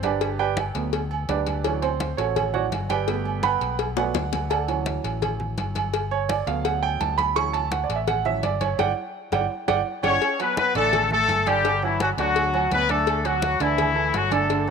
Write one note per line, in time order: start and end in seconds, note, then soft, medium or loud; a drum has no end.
0.00 0.69 G1 loud
0.00 0.37 D5 loud
0.00 cowbell medium
0.00 high conga medium
0.00 low agogo loud
0.04 0.37 D4 medium
0.04 0.37 G4 medium
0.04 0.37 B4 medium
0.21 cowbell loud
0.21 high conga soft
0.21 low agogo medium
0.39 0.57 G4 medium
0.39 0.57 B4 medium
0.39 0.57 D5 medium
0.39 0.57 G5 loud
0.39 high conga soft
0.39 low agogo medium
0.57 cowbell medium
0.57 high conga loud
0.57 low agogo loud
0.75 1.25 D2 medium
0.75 0.99 F#3 medium
0.75 0.99 A3 soft
0.75 0.99 B3 medium
0.75 cowbell medium
0.75 high conga soft
0.93 cowbell loud
0.93 high conga soft
0.93 low agogo medium
1.11 high conga soft
1.11 low agogo loud
1.29 2.12 D2 medium
1.29 1.79 D4 medium
1.29 1.62 G4 medium
1.29 1.79 B4 medium
1.29 1.79 D5 medium
1.29 cowbell medium
1.29 high conga medium
1.29 low timbale medium
1.47 cowbell medium
1.47 high conga medium
1.47 low agogo medium
1.64 1.88 E3 medium
1.64 1.88 F#3 medium
1.64 1.89 C#4 medium
1.64 cowbell loud
1.64 high conga soft
1.64 low agogo loud
1.82 2.16 C4 medium
1.82 2.16 C5 medium
1.82 cowbell medium
1.82 high conga soft
1.82 low agogo loud
2.00 cowbell medium
2.00 high conga loud
2.17 2.68 A1 medium
2.17 2.51 C#4 medium
2.17 2.51 F#4 medium
2.17 2.51 A4 medium
2.17 2.51 C#5 medium
2.17 cowbell medium
2.17 low agogo medium
2.36 cowbell loud
2.36 high conga soft
2.36 low conga medium
2.36 low agogo loud
2.54 2.70 E3 medium
2.54 2.70 F#3 medium
2.54 2.70 C#4 medium
2.54 2.65 F#4 medium
2.54 2.65 C#5 medium
2.54 2.65 D5 medium
2.54 2.64 F#5 loud
2.54 high conga soft
2.54 low conga medium
2.72 3.55 G1 loud
2.72 cowbell medium
2.72 high conga medium
2.72 low timbale medium
2.72 low agogo medium
2.90 3.40 G4 medium
2.90 3.40 B4 medium
2.90 3.40 D5 medium
2.90 3.40 G5 loud
2.90 cowbell medium
2.90 high conga medium
2.90 low agogo loud
3.08 4.47 G3 medium
3.08 3.96 A3 medium
3.08 3.96 B3 medium
3.08 cowbell loud
3.08 high conga soft
3.08 low agogo medium
3.25 high conga soft
3.25 low agogo medium
3.43 3.77 B4 medium
3.43 3.77 F#5 medium
3.43 3.77 G5 medium
3.43 3.77 B5 loud
3.43 cowbell medium
3.43 high conga loud
3.43 low agogo loud
3.61 4.11 B1 medium
3.61 cowbell medium
3.61 high conga soft
3.79 cowbell loud
3.79 high conga soft
3.79 low agogo medium
3.97 4.13 F#3 medium
3.97 4.13 A3 medium
3.97 4.13 B3 medium
3.97 4.47 F#4 medium
3.97 4.47 B4 medium
3.97 4.47 D5 medium
3.97 4.47 F#5 medium
3.97 high bongo loud
3.97 high conga soft
3.97 low agogo loud
4.14 4.98 D2 loud
4.14 cowbell medium
4.14 high bongo loud
4.14 high conga medium
4.33 cowbell medium
4.33 low bongo medium
4.33 high conga medium
4.33 low agogo medium
4.50 4.84 A4 medium
4.50 4.84 D5 medium
4.50 4.84 F#5 medium
4.50 4.84 A5 medium
4.50 cowbell loud
4.50 high conga soft
4.50 low agogo loud
4.68 5.89 E3 medium
4.68 5.90 F#3 medium
4.68 5.90 C#4 medium
4.68 cowbell medium
4.68 high conga soft
4.68 low agogo medium
4.86 cowbell medium
4.86 high conga medium
5.04 5.54 A1 loud
5.04 cowbell medium
5.04 low agogo medium
5.22 cowbell loud
5.22 high conga soft
5.22 low conga medium
5.22 low agogo loud
5.40 high conga soft
5.40 low conga medium
5.57 6.41 G1 medium
5.57 cowbell medium
5.57 high conga medium
5.57 low agogo medium
5.75 cowbell medium
5.75 high conga medium
5.75 low agogo loud
5.93 cowbell loud
5.93 high conga soft
5.93 low agogo medium
6.11 6.29 C#5 loud
6.11 high conga soft
6.11 low agogo medium
6.29 6.46 D5 medium
6.29 cowbell medium
6.29 high conga medium
6.29 low agogo loud
6.47 6.97 D2 loud
6.47 7.32 F#3 medium
6.47 7.32 A3 soft
6.47 7.33 B3 medium
6.47 6.64 F5 medium
6.47 cowbell medium
6.47 high conga soft
6.65 6.82 F#5 medium
6.65 cowbell loud
6.65 high conga soft
6.65 low agogo medium
6.83 7.00 G5 loud
6.83 high conga soft
6.83 low agogo loud
7.00 7.84 D2 medium
7.00 7.18 A5 medium
7.00 cowbell medium
7.00 high conga medium
7.00 low timbale medium
7.18 7.35 B5 loud
7.18 cowbell medium
7.18 high conga medium
7.18 low agogo medium
7.35 7.60 E3 medium
7.35 7.60 F#3 medium
7.35 7.60 C#4 medium
7.35 7.53 C#6 loud
7.35 cowbell loud
7.35 low agogo loud
7.53 7.71 A5 loud
7.53 cowbell medium
7.53 high conga soft
7.53 low agogo medium
7.72 7.83 F#5 medium
7.72 cowbell medium
7.72 high conga loud
7.84 7.95 D5 medium
7.89 8.39 A1 medium
7.89 cowbell medium
7.89 low agogo medium
7.96 8.07 E5 medium
8.07 8.25 F#5 loud
8.07 cowbell loud
8.07 high conga soft
8.07 low conga medium
8.07 low agogo loud
8.25 8.41 E3 soft
8.25 8.42 F#3 medium
8.25 8.42 C#4 medium
8.25 8.43 E5 loud
8.25 high conga soft
8.25 low conga medium
8.43 8.76 G1 loud
8.43 8.61 D5 loud
8.43 cowbell medium
8.43 high conga medium
8.43 low agogo medium
8.61 8.78 C#5 medium
8.61 cowbell medium
8.61 high conga medium
8.61 low agogo loud
8.78 8.92 G1 loud
8.78 8.90 D5 medium
8.78 8.90 F#5 loud
8.78 8.90 G5 loud
8.78 cowbell loud
8.78 high conga loud
8.78 high timbale medium
9.32 9.46 G1 loud
9.32 9.44 D5 medium
9.32 9.44 F#5 medium
9.32 9.44 G5 loud
9.32 cowbell loud
9.32 high conga loud
9.32 high timbale loud
9.68 9.81 G1 medium
9.68 9.79 D5 loud
9.68 9.79 F#5 loud
9.68 9.79 G5 loud
9.68 cowbell loud
9.68 high conga loud
9.68 high timbale loud
10.03 10.17 G1 loud
10.03 10.37 C#4 medium
10.03 10.37 C#5 loud
10.03 10.15 D5 medium
10.03 10.15 F#5 loud
10.03 10.15 G5 loud
10.03 cowbell medium
10.03 high conga medium
10.03 high timbale loud
10.21 cowbell loud
10.21 high conga soft
10.21 low agogo loud
10.39 10.69 F#3 medium
10.39 10.58 B3 medium
10.39 10.69 F#4 medium
10.39 10.57 B4 loud
10.39 10.69 F#5 medium
10.39 cowbell medium
10.39 high conga soft
10.39 low agogo loud
10.57 10.75 B3 medium
10.57 10.74 B4 loud
10.57 cowbell medium
10.57 high conga loud
10.75 11.25 A1 loud
10.75 11.05 D3 medium
10.75 11.09 A3 medium
10.75 11.05 D4 loud
10.75 11.09 A4 loud
10.75 11.05 D5 medium
10.75 cowbell medium
10.75 low agogo loud
10.93 cowbell loud
10.93 high conga soft
10.93 low conga medium
10.93 low agogo loud
11.11 11.41 A3 medium
11.11 11.45 A3 medium
11.11 11.44 A4 loud
11.11 11.41 A4 medium
11.11 11.41 A5 medium
11.11 high conga soft
11.11 low conga medium
11.28 12.12 G1 medium
11.28 cowbell medium
11.28 high conga medium
11.28 low agogo medium
11.46 11.61 D3 loud
11.46 11.83 G3 medium
11.46 11.61 D4 loud
11.46 11.82 G4 loud
11.46 11.62 D5 medium
11.46 cowbell medium
11.46 high conga medium
11.46 low agogo loud
11.65 11.79 D3 medium
11.65 11.80 D4 medium
11.65 11.80 D5 medium
11.65 cowbell loud
11.65 low agogo medium
11.82 12.00 E3 medium
11.82 12.12 F#3 medium
11.82 12.00 E4 medium
11.82 12.12 F#4 medium
11.82 12.12 F#5 medium
11.82 high conga soft
11.82 low agogo medium
12.00 12.09 F#3 medium
12.00 12.09 F#4 medium
12.00 cowbell medium
12.00 high conga loud
12.00 low agogo loud
12.17 12.67 D2 medium
12.17 12.47 D3 loud
12.17 12.68 F#3 medium
12.17 12.48 D4 medium
12.17 12.68 F#4 loud
12.17 12.48 D5 medium
12.17 cowbell medium
12.17 high conga soft
12.36 cowbell loud
12.36 high conga soft
12.36 low agogo medium
12.54 12.83 F#3 medium
12.54 12.83 F#4 medium
12.54 12.84 F#5 loud
12.54 high conga soft
12.54 low agogo loud
12.71 13.55 D2 loud
12.71 12.89 B3 medium
12.71 12.89 B4 loud
12.71 cowbell medium
12.71 high conga loud
12.71 low timbale medium
12.89 13.25 A3 medium
12.89 13.19 D4 medium
12.89 13.25 A4 loud
12.89 13.19 D5 medium
12.89 13.19 D6 medium
12.89 cowbell medium
12.89 high conga medium
12.89 low agogo medium
13.07 cowbell loud
13.07 high conga soft
13.07 low agogo loud
13.25 13.54 F#3 medium
13.25 13.61 F#3 medium
13.25 13.54 F#4 medium
13.25 13.61 F#4 medium
13.25 13.55 F#5 medium
13.25 cowbell medium
13.25 high conga soft
13.25 low agogo medium
13.42 cowbell medium
13.42 high conga loud
13.60 14.10 D2 loud
13.60 13.90 D3 medium
13.60 14.14 E3 medium
13.60 13.90 D4 medium
13.60 14.14 E4 loud
13.60 13.90 D5 medium
13.60 cowbell medium
13.60 low agogo medium
13.78 cowbell loud
13.78 high conga soft
13.78 low conga medium
13.78 low agogo loud
13.95 14.25 A3 medium
13.95 14.25 A4 medium
13.95 14.26 A5 medium
13.95 high conga soft
14.14 14.70 G1 medium
14.14 14.33 F#3 medium
14.14 14.32 F#4 loud
14.14 cowbell medium
14.14 high conga medium
14.14 low agogo medium
14.31 14.46 D3 loud
14.31 14.66 A3 medium
14.31 14.47 D4 medium
14.31 14.66 A4 medium
14.31 14.47 D5 medium
14.31 cowbell medium
14.31 high conga medium
14.31 low agogo loud
14.49 14.64 D3 medium
14.49 14.64 D4 medium
14.49 14.65 D5 medium
14.49 cowbell loud
14.49 high conga soft
14.49 low agogo medium